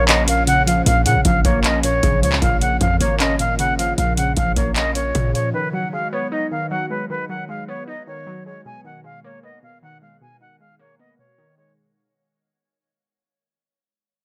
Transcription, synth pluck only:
0.00 0.27 A#2 medium
0.00 0.46 C#3 medium
0.00 0.66 F3 medium
0.00 0.86 A#3 loud
0.08 1.06 C#4 medium
0.28 0.85 A#2 medium
0.47 1.05 C#3 medium
0.67 1.24 F3 medium
0.86 1.83 A#2 medium
1.06 2.02 C#3 medium
1.26 2.21 F3 medium
1.45 2.42 A#3 loud
1.64 2.62 C#4 medium
1.84 2.42 A#2 medium
2.03 2.61 C#3 loud
2.23 2.80 F3 medium
2.43 3.39 A#2 medium
2.62 3.58 C#3 medium
2.81 3.78 F3 medium
3.01 3.98 A#3 loud
3.20 4.18 C#4 medium
3.40 3.97 A#2 medium
3.59 4.17 C#3 medium
3.79 4.36 F3 medium
3.98 4.94 A#2 medium
4.18 5.14 C#3 medium
4.37 5.33 F3 medium
4.57 5.54 A#3 loud
4.76 5.54 C#4 medium
4.95 5.54 A#2 medium
5.15 5.54 C#3 medium
5.34 5.54 F3 medium
5.54 6.50 D#3 medium
5.73 6.70 F#3 medium
5.93 6.89 G#3 medium
6.13 7.10 B3 loud
6.32 7.29 D#4 medium
6.51 7.09 D#3 medium
6.71 7.28 F#3 medium
6.90 7.48 G#3 medium
7.10 8.06 D#3 medium
7.29 8.25 F#3 medium
7.49 8.45 G#3 medium
7.68 8.66 B3 loud
7.88 8.66 D#4 medium
8.07 8.66 D#3 medium
8.27 8.66 F#3 medium
8.46 8.66 G#3 medium
8.66 9.62 B2 medium
8.84 9.81 D#3 medium
9.04 10.00 G#3 medium
9.24 10.22 A#3 loud
9.43 10.41 B3 medium
9.63 10.20 B2 medium
9.83 10.40 D#3 medium
10.02 10.59 G#3 medium
10.21 11.18 B2 medium
10.41 11.37 D#3 medium
10.60 11.57 G#3 medium
10.79 11.77 A#3 loud
10.99 11.77 B3 medium
11.19 11.77 B2 medium
11.38 11.77 D#3 loud
11.58 11.77 G#3 medium

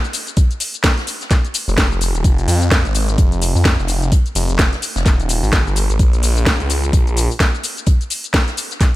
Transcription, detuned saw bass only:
1.68 2.13 F1 loud
2.15 2.23 D#1 medium
2.24 2.46 F1 loud
2.48 2.83 F2 loud
2.85 3.17 G#1 loud
3.18 3.53 F1 loud
3.55 3.77 F2 loud
3.79 4.10 F1 loud
4.35 4.57 F1 loud
4.59 4.70 F1 loud
4.96 5.04 F1 loud
5.06 5.41 D#1 loud
5.43 5.64 G#1 loud
5.66 5.88 G1 loud
5.90 5.98 G#1 loud
5.99 6.21 A#1 loud
6.23 6.58 A#1 loud
6.60 6.92 C#2 loud
6.93 7.28 A#1 loud

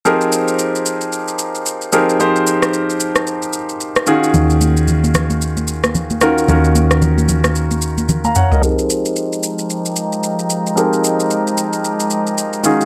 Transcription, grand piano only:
0.05 0.92 F3 medium
0.05 0.92 C4 medium
0.05 0.92 D#4 medium
0.05 0.92 G4 medium
0.05 0.92 G#4 medium
0.05 0.93 A#4 medium
1.92 2.15 F3 medium
1.92 2.15 C4 medium
1.92 2.15 D#4 medium
1.92 2.16 G4 medium
1.92 2.16 G#4 medium
1.92 2.16 A#4 medium
2.19 3.06 F3 medium
2.19 3.06 C4 medium
2.19 3.06 D#4 medium
2.19 3.07 G4 medium
2.19 3.07 G#4 medium
2.19 3.07 C5 medium
4.07 4.94 D#3 medium
4.07 4.94 C#4 medium
4.07 4.94 F4 medium
4.07 4.94 F#4 medium
4.07 4.94 G#4 medium
6.21 6.44 D#3 medium
6.21 6.44 C#4 medium
6.21 6.44 F4 medium
6.21 6.44 F#4 medium
6.21 6.44 A#4 medium
6.48 7.35 D#3 medium
6.48 7.35 C#4 medium
6.48 7.35 F4 medium
6.48 7.35 F#4 medium
6.48 7.35 A#4 medium
8.25 8.36 F5 medium
8.25 8.35 A#5 medium
8.36 8.51 C#5 medium
8.36 8.51 F#5 medium
8.51 8.63 A#4 medium
8.51 8.77 D#5 medium
8.61 10.72 F3 medium
8.61 10.73 C4 medium
8.61 10.73 D#4 medium
8.61 10.73 G4 medium
8.61 10.73 G#4 medium
8.61 10.74 A#4 medium
10.76 12.60 F3 medium
10.76 12.60 C4 medium
10.76 12.61 D#4 medium
10.76 12.61 G4 medium
10.76 12.61 G#4 medium
10.76 12.61 A#4 medium
12.63 12.85 D#3 medium
12.63 12.85 C#4 medium
12.63 12.85 F4 medium
12.63 12.85 F#4 medium
12.63 12.85 G#4 medium

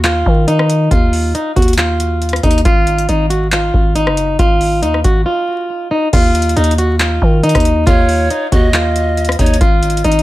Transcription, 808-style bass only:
0.00 0.23 D#2 loud
0.26 0.89 D#3 loud
0.91 1.33 D#2 loud
1.57 2.40 D#2 loud
2.43 2.64 D#2 loud
2.65 3.07 G#1 loud
3.09 3.71 G#1 loud
3.74 4.09 G#1 loud
4.07 4.38 F#1 loud
4.39 4.84 G#1 loud
4.83 5.03 D#2 loud
5.04 5.25 G#1 loud
6.13 6.55 D#2 loud
6.57 7.19 D#2 loud
7.22 7.54 D#3 loud
7.55 7.86 D#2 loud
7.87 8.29 D#2 loud
8.52 9.36 D#2 loud
9.39 9.60 D#2 loud
9.61 10.03 G#1 loud
10.04 10.23 G#1 loud

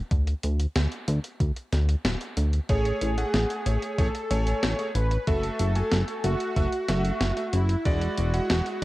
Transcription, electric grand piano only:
2.69 3.14 A3 medium
2.69 3.14 G#4 medium
2.69 3.14 C#5 loud
3.18 3.62 A3 medium
3.18 3.62 G#4 medium
3.18 3.62 F#5 medium
3.66 3.95 A3 medium
3.66 3.95 G#4 medium
3.66 3.95 C#5 medium
3.98 4.06 A3 loud
3.98 4.06 G#4 medium
3.98 4.06 C#5 loud
4.30 4.75 A3 medium
4.30 4.75 C#5 loud
4.30 4.75 G#5 medium
4.79 4.87 A3 medium
4.79 4.87 G#4 medium
4.79 4.87 C#5 medium
5.27 5.72 A3 medium
5.27 5.72 F#4 medium
5.27 5.72 E5 loud
5.76 6.20 A3 medium
5.76 6.20 F#4 medium
5.76 6.20 G#5 medium
6.24 6.53 A3 medium
6.24 6.53 F#4 medium
6.24 6.53 E5 medium
6.56 6.64 A3 loud
6.56 6.64 F#4 medium
6.56 6.64 E5 loud
6.89 7.33 A3 medium
6.89 7.33 F#4 medium
6.89 7.33 E5 loud
7.37 7.45 A3 medium
7.37 7.45 F#4 medium
7.37 7.45 E5 medium
7.86 8.30 G#3 loud
7.86 8.30 E4 medium
7.86 8.30 D5 loud
8.34 8.78 G#3 medium
8.34 8.78 E4 medium
8.34 8.78 F#5 medium

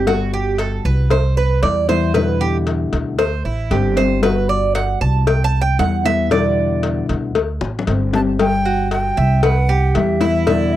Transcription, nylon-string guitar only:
0.06 1.11 G3 medium
0.06 1.10 B3 medium
0.06 1.11 F#4 medium
1.11 muted nylon-string guitar stroke medium
1.62 1.88 E3 medium
1.62 1.88 G3 medium
1.62 1.88 B3 medium
1.62 1.87 E4 medium
1.88 2.15 E3 medium
1.88 2.14 G3 medium
1.88 2.14 B3 medium
1.88 2.14 E4 medium
2.14 3.18 B2 medium
2.14 3.18 D3 medium
2.14 3.19 G3 medium
2.14 3.19 B3 medium
2.14 3.19 E4 medium
3.19 muted nylon-string guitar stroke medium
3.70 3.96 D3 medium
3.70 3.96 G3 medium
3.70 3.96 C4 medium
3.70 3.95 G4 medium
3.96 4.20 G3 medium
3.96 4.22 C4 medium
3.96 4.22 G4 medium
4.21 5.27 G3 medium
4.21 5.26 B3 medium
4.21 5.27 F#4 medium
5.26 muted nylon-string guitar stroke medium
5.78 6.04 E3 soft
5.78 6.04 G3 medium
5.78 6.04 B3 medium
5.78 6.03 E4 medium
6.04 6.30 E3 medium
6.04 6.31 G3 medium
6.04 6.30 B3 medium
6.04 6.30 E4 medium
6.29 7.33 B2 medium
6.29 7.34 D3 medium
6.29 7.34 G3 medium
6.29 7.35 B3 medium
6.29 7.35 E4 medium
7.35 muted nylon-string guitar stroke medium
7.87 8.12 D3 medium
7.87 8.13 G3 medium
7.87 8.13 C4 soft
7.87 8.12 G4 medium
8.13 8.38 G3 medium
8.13 8.39 C4 medium
8.13 8.38 G4 medium
8.39 9.43 G3 medium
8.39 9.43 B3 medium
9.43 muted nylon-string guitar stroke medium
9.95 10.20 E3 medium
9.95 10.20 G3 medium
9.95 10.20 B3 medium
9.95 10.19 E4 medium
10.20 10.47 E3 medium
10.20 10.47 G3 medium
10.20 10.46 B3 medium
10.20 10.46 E4 medium
10.46 10.76 B2 medium
10.46 10.76 D3 medium
10.46 10.76 G3 medium
10.46 10.76 B3 medium
10.46 10.76 E4 medium

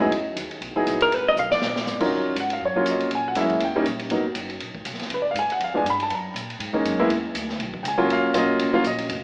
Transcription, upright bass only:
0.00 0.11 G#2 loud
0.11 0.36 E2 medium
0.36 0.60 D#2 loud
0.61 0.70 B1 medium
0.70 0.77 G#1 medium
0.78 0.86 E1 medium
0.86 1.11 A#1 loud
1.12 1.36 G#1 medium
1.36 1.60 B1 medium
1.60 1.85 A#1 medium
1.86 2.10 G#1 medium
2.11 2.35 D#2 medium
2.35 2.60 G#2 loud
2.60 2.85 F#2 medium
2.85 3.10 F2 loud
3.10 3.35 A#2 medium
3.35 3.60 F#2 loud
3.60 3.84 D#2 medium
3.85 4.09 A#1 medium
4.10 4.35 G#1 medium
4.36 4.60 F#1 medium
4.60 4.74 A#1 medium
4.75 muted upright bass stroke soft
4.86 4.96 B1 loud
4.95 5.02 G#1 medium
5.02 5.09 F#1 medium
5.10 5.34 C#2 medium
5.34 5.48 G#2 medium
5.49 muted upright bass stroke soft
5.60 5.84 F2 medium
5.84 6.09 G2 loud
6.10 6.33 F#2 medium
6.34 6.59 A#2 loud
6.59 6.83 G#2 medium
6.84 7.08 F#2 loud
7.08 7.33 E2 medium
7.34 7.59 D2 medium
7.59 7.83 B1 medium
7.84 8.08 C#2 loud
8.09 8.33 D#2 medium
8.33 8.58 B1 loud
8.59 8.72 C#2 medium
8.73 muted upright bass stroke soft
8.84 9.08 A#1 medium
9.09 9.24 F1 medium

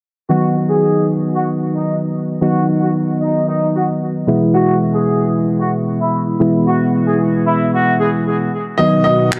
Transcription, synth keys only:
0.29 2.38 D#3 medium
0.29 2.38 F#3 medium
0.29 2.38 B3 medium
0.29 2.38 D#4 medium
2.41 4.24 D#3 medium
2.41 4.24 F#3 medium
2.41 4.24 B3 medium
2.41 4.24 D#4 medium
4.27 6.36 B2 medium
4.27 6.36 E3 medium
4.27 6.36 G#3 medium
4.27 6.36 B3 medium
4.27 6.36 E4 medium
6.40 8.48 B2 medium
6.40 8.48 E3 medium
6.40 8.48 G#3 medium
6.40 8.49 B3 medium
6.40 8.49 E4 medium
8.78 9.40 D#3 medium
8.78 9.40 F#3 medium
8.78 9.40 B3 medium
8.78 9.40 D#4 medium

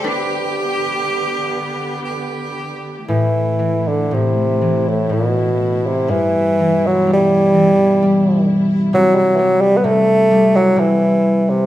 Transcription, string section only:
0.00 3.06 D3 medium
0.00 3.06 G4 medium
0.04 3.07 B3 medium
3.09 6.08 E3 medium
3.09 6.07 A3 soft
3.09 11.66 E4 medium
6.10 8.92 B2 medium
6.10 11.66 G3 medium
8.93 11.66 C3 medium

